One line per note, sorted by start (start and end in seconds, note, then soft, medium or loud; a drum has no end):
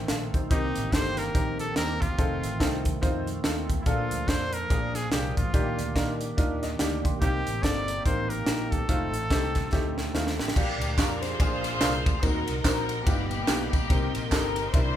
0.00 2.15 D#3 medium
0.00 0.49 A3 medium
0.00 3.82 C4 medium
0.00 0.49 F4 medium
0.08 0.30 A#1 medium
0.08 0.33 A4 medium
0.08 0.32 F5 medium
0.08 snare loud
0.08 closed hi-hat medium
0.34 0.48 B1 medium
0.34 0.50 D#4 medium
0.34 0.74 C5 medium
0.34 kick medium
0.34 closed hi-hat medium
0.50 0.72 C2 loud
0.50 1.14 C3 medium
0.50 2.16 A#3 medium
0.50 0.76 C4 medium
0.50 0.77 D#4 medium
0.50 0.95 D#4 medium
0.50 2.17 G4 medium
0.50 0.77 G4 medium
0.50 0.77 A#4 medium
0.50 kick loud
0.50 closed hi-hat medium
0.76 0.90 A1 medium
0.76 closed hi-hat medium
0.92 1.28 G1 medium
0.92 1.18 C4 medium
0.92 1.19 D#4 medium
0.92 1.19 G4 medium
0.92 1.19 A4 medium
0.92 1.20 C5 loud
0.92 kick medium
0.92 snare loud
0.92 closed hi-hat medium
1.17 1.60 A#4 medium
1.17 snare soft
1.17 closed hi-hat medium
1.35 1.70 A#1 medium
1.35 1.60 C4 medium
1.35 1.60 D#4 medium
1.35 1.61 G4 medium
1.35 1.61 A#4 medium
1.35 kick loud
1.35 closed hi-hat medium
1.59 1.76 A4 medium
1.59 closed hi-hat medium
1.76 1.98 D#2 medium
1.76 2.02 C4 medium
1.76 2.02 D#4 medium
1.76 2.02 G4 medium
1.76 2.03 A#4 loud
1.76 2.02 A#4 medium
1.76 snare loud
1.76 closed hi-hat medium
2.02 2.16 E1 medium
2.02 2.86 F4 medium
2.02 kick medium
2.02 closed hi-hat medium
2.18 2.40 F1 loud
2.18 3.84 D#3 medium
2.18 3.85 A3 medium
2.18 2.44 C4 medium
2.18 2.44 D#4 medium
2.18 3.85 F4 medium
2.18 2.44 F4 medium
2.18 2.44 A4 medium
2.18 kick loud
2.18 closed hi-hat medium
2.44 2.60 A1 medium
2.44 closed hi-hat medium
2.60 2.96 C2 medium
2.60 2.86 C4 medium
2.60 2.86 D#4 medium
2.60 2.86 F4 medium
2.60 2.86 A4 medium
2.60 kick medium
2.60 snare loud
2.60 closed hi-hat medium
2.85 kick medium
2.85 closed hi-hat medium
3.01 3.38 F2 medium
3.01 3.28 C4 medium
3.01 3.28 D#4 medium
3.01 3.28 F4 medium
3.01 3.28 C5 medium
3.01 kick loud
3.01 closed hi-hat medium
3.27 closed hi-hat medium
3.44 3.80 D#2 medium
3.44 3.70 C4 medium
3.44 3.70 D#4 medium
3.44 3.70 F4 medium
3.44 3.70 A4 medium
3.44 snare loud
3.44 closed hi-hat medium
3.70 kick medium
3.70 closed hi-hat medium
3.82 3.88 E4 medium
3.86 4.08 A#1 medium
3.86 4.49 A#2 soft
3.86 5.52 F3 medium
3.86 5.52 A#3 medium
3.86 4.12 A#3 medium
3.86 4.69 D4 medium
3.86 4.12 D4 medium
3.86 4.30 F4 medium
3.86 4.12 F4 medium
3.86 4.69 A4 medium
3.86 4.12 A4 medium
3.86 kick medium
3.86 closed hi-hat medium
4.11 4.26 D2 medium
4.11 closed hi-hat medium
4.28 4.64 F2 medium
4.28 4.54 A#3 medium
4.28 4.54 D4 medium
4.28 4.54 F4 medium
4.28 4.54 A4 medium
4.28 4.55 C5 medium
4.28 kick medium
4.28 snare medium
4.28 closed hi-hat medium
4.53 4.97 A#4 medium
4.53 closed hi-hat medium
4.70 5.06 A#1 medium
4.70 5.33 A#2 medium
4.70 4.96 A#3 medium
4.70 4.96 D4 medium
4.70 7.19 D4 medium
4.70 4.96 F4 medium
4.70 5.53 G#4 medium
4.70 4.96 G#4 medium
4.70 kick loud
4.70 closed hi-hat medium
4.95 5.12 G#4 medium
4.95 snare soft
4.95 closed hi-hat medium
5.12 5.33 C2 medium
5.12 5.38 A#3 medium
5.12 5.38 D4 medium
5.12 5.38 F4 medium
5.12 5.36 G4 medium
5.12 5.38 G#4 medium
5.12 snare loud
5.12 closed hi-hat medium
5.37 5.51 A1 medium
5.37 6.17 F4 medium
5.37 kick medium
5.37 closed hi-hat medium
5.53 5.75 A#1 medium
5.53 6.17 A#2 medium
5.53 7.20 D#3 medium
5.53 5.79 A#3 medium
5.53 8.86 A#3 medium
5.53 5.80 D4 medium
5.53 5.80 D#4 medium
5.53 7.20 G4 medium
5.53 5.80 G4 loud
5.53 kick loud
5.53 closed hi-hat medium
5.79 5.93 D2 medium
5.79 closed hi-hat medium
5.95 6.31 A#2 medium
5.95 6.21 A#3 medium
5.95 6.21 D4 medium
5.95 6.21 D#4 medium
5.95 6.22 A#4 medium
5.95 kick medium
5.95 snare medium
5.95 closed hi-hat medium
6.21 closed hi-hat medium
6.37 6.74 D#2 medium
6.37 6.63 A#3 medium
6.37 6.63 D4 medium
6.37 6.63 D#4 medium
6.37 6.64 F4 medium
6.37 kick loud
6.37 closed hi-hat medium
6.63 6.79 D#5 medium
6.63 snare soft
6.63 closed hi-hat medium
6.79 7.01 D2 medium
6.79 7.05 A#3 medium
6.79 7.05 D4 medium
6.79 7.05 D#4 medium
6.79 7.05 G4 medium
6.79 7.03 G5 medium
6.79 snare medium
6.79 closed hi-hat loud
7.05 7.19 B1 medium
7.05 7.21 C6 medium
7.05 kick medium
7.05 closed hi-hat medium
7.21 7.43 C2 loud
7.21 7.85 C3 medium
7.21 7.47 A#3 medium
7.21 8.87 C4 medium
7.21 7.47 C4 medium
7.21 10.53 D#4 medium
7.21 7.47 D#4 medium
7.21 7.65 G4 loud
7.21 8.87 G4 medium
7.21 7.47 G4 medium
7.21 kick medium
7.21 closed hi-hat medium
7.46 7.61 A1 medium
7.46 closed hi-hat medium
7.63 7.99 G1 medium
7.63 7.89 A#3 medium
7.63 7.89 C4 medium
7.63 7.89 D#4 medium
7.63 7.89 A4 medium
7.63 8.05 D5 loud
7.63 kick medium
7.63 snare medium
7.63 closed hi-hat medium
7.88 closed hi-hat medium
8.05 8.41 A1 medium
8.05 8.31 A#3 medium
8.05 8.31 C4 medium
8.05 8.31 D#4 medium
8.05 8.31 A#4 medium
8.05 8.31 C5 medium
8.05 kick loud
8.05 closed hi-hat medium
8.30 8.74 A#4 medium
8.30 closed hi-hat medium
8.46 8.83 A#1 medium
8.46 8.73 A#3 medium
8.46 8.73 C4 medium
8.46 8.73 D#4 medium
8.46 8.73 F4 medium
8.46 snare loud
8.46 closed hi-hat medium
8.72 10.15 A4 medium
8.72 kick medium
8.72 closed hi-hat medium
8.88 9.13 F1 loud
8.88 9.14 A3 medium
8.88 10.54 A3 medium
8.88 10.54 C4 medium
8.88 9.15 C4 medium
8.88 9.15 D#4 medium
8.88 10.54 F4 medium
8.88 9.15 F4 medium
8.88 kick medium
8.88 closed hi-hat medium
9.13 9.28 A1 medium
9.13 closed hi-hat medium
9.30 9.66 C2 medium
9.30 9.56 A3 medium
9.30 9.57 C4 medium
9.30 9.57 D#4 medium
9.30 9.57 G4 medium
9.30 kick medium
9.30 snare loud
9.30 closed hi-hat medium
9.55 kick medium
9.55 snare soft
9.55 closed hi-hat medium
9.72 10.08 D2 medium
9.72 9.98 A3 medium
9.72 9.98 C4 medium
9.72 9.98 D#4 medium
9.72 9.98 G4 medium
9.72 kick loud
9.72 snare soft
9.98 snare medium
10.13 10.39 D#2 medium
10.13 10.40 A3 medium
10.13 10.40 C4 medium
10.13 10.40 D#4 medium
10.13 10.40 F4 medium
10.13 snare medium
10.27 snare medium
10.38 10.53 A1 medium
10.38 11.19 D4 medium
10.38 10.93 G4 medium
10.38 snare medium
10.48 snare medium
10.56 10.82 A#1 medium
10.56 11.19 A#2 medium
10.56 10.82 A#3 medium
10.56 10.82 D4 medium
10.56 10.82 F4 medium
10.56 11.39 G4 medium
10.56 10.82 G4 medium
10.56 11.39 D5 medium
10.56 11.39 F5 medium
10.56 12.21 A#5 medium
10.56 kick loud
10.56 crash medium
10.56 tambourine medium
10.81 10.96 D2 medium
10.81 ride medium
10.81 tambourine medium
10.98 11.33 F2 medium
10.98 11.23 A#3 medium
10.98 11.24 D4 medium
10.98 11.24 F4 medium
10.98 11.24 G4 medium
10.98 11.23 A#4 medium
10.98 kick medium
10.98 snare medium
10.98 clap medium
10.98 ride medium
10.98 tambourine medium
11.23 12.19 F4 medium
11.23 12.19 G#4 medium
11.23 12.23 C5 loud
11.23 snare soft
11.23 ride medium
11.23 tambourine medium
11.40 11.75 A#1 medium
11.40 12.03 A#2 medium
11.40 11.65 A#3 medium
11.40 11.66 D4 medium
11.40 11.66 F4 medium
11.40 12.23 G#4 medium
11.40 11.66 G#4 medium
11.40 12.23 D5 medium
11.40 12.23 F5 medium
11.40 kick loud
11.40 ride medium
11.40 tambourine medium
11.64 snare soft
11.64 ride medium
11.64 tambourine medium
11.81 12.02 C2 loud
11.81 12.07 A#3 medium
11.81 12.07 D4 medium
11.81 12.07 F4 medium
11.81 12.07 A#4 medium
11.81 snare loud
11.81 clap loud
11.81 ride medium
11.81 tambourine loud
12.06 12.21 D2 medium
12.06 kick loud
12.06 ride medium
12.06 tambourine medium
12.23 12.44 D#2 loud
12.23 12.86 D#3 medium
12.23 12.49 C4 medium
12.23 12.49 D#4 medium
12.23 12.49 F#4 medium
12.23 12.63 F#4 medium
12.23 12.62 A#4 loud
12.23 12.49 A#4 medium
12.23 13.06 A#4 medium
12.23 14.71 D#5 medium
12.23 13.06 F#5 medium
12.23 13.06 C6 medium
12.23 kick loud
12.23 ride medium
12.23 tambourine medium
12.48 12.62 C2 medium
12.48 ride medium
12.48 tambourine soft
12.63 13.00 A#1 medium
12.63 12.90 C4 medium
12.63 12.90 D#4 medium
12.63 13.03 F#4 medium
12.63 12.90 F#4 medium
12.63 13.03 A#4 loud
12.63 12.90 C5 medium
12.63 kick medium
12.63 snare loud
12.63 clap loud
12.63 ride medium
12.63 tambourine loud
12.89 ride medium
12.89 tambourine medium
13.06 13.42 G1 medium
13.06 13.69 G2 medium
13.06 13.31 A#3 medium
13.06 13.31 B3 medium
13.06 13.32 B3 medium
13.06 13.32 D#4 medium
13.06 13.32 F4 medium
13.06 13.29 G4 loud
13.06 13.89 G4 medium
13.06 13.32 G4 medium
13.06 13.89 F5 medium
13.06 13.89 B5 medium
13.06 kick loud
13.06 ride medium
13.06 tambourine medium
13.31 13.73 A#3 medium
13.31 13.86 B3 medium
13.31 13.70 G4 loud
13.31 ride medium
13.31 tambourine soft
13.48 13.69 B1 medium
13.48 13.74 B3 medium
13.48 13.74 D#4 medium
13.48 13.74 F4 medium
13.48 13.74 G4 medium
13.48 snare loud
13.48 clap medium
13.48 ride medium
13.48 tambourine medium
13.72 13.88 B1 medium
13.72 14.53 A#3 medium
13.72 14.32 D#4 medium
13.72 14.27 G4 loud
13.72 kick loud
13.72 ride soft
13.72 tambourine medium
13.90 14.11 C2 loud
13.90 14.53 C3 medium
13.90 14.15 C4 medium
13.90 14.16 D#4 medium
13.90 14.16 G4 medium
13.90 14.96 A#4 medium
13.90 14.16 A#4 medium
13.90 14.73 G5 medium
13.90 14.96 C6 medium
13.90 kick loud
13.90 ride medium
13.90 tambourine medium
14.15 14.29 A#1 medium
14.15 ride medium
14.15 tambourine medium
14.31 14.67 G1 medium
14.31 14.57 C4 medium
14.31 14.57 D#4 medium
14.31 14.71 D#4 medium
14.31 14.57 G4 medium
14.31 14.71 G4 medium
14.31 14.58 A4 medium
14.31 14.73 A#4 loud
14.31 kick medium
14.31 snare loud
14.31 clap medium
14.31 ride medium
14.31 tambourine medium
14.56 ride medium
14.56 tambourine medium
14.73 14.96 C2 loud
14.73 14.96 C3 medium
14.73 14.96 C4 medium
14.73 14.96 D4 medium
14.73 14.96 E4 medium
14.73 14.96 G4 medium
14.73 14.96 A#4 medium
14.73 14.96 C5 loud
14.73 14.96 D5 medium
14.73 14.96 E5 medium
14.73 kick loud
14.73 ride medium
14.73 tambourine medium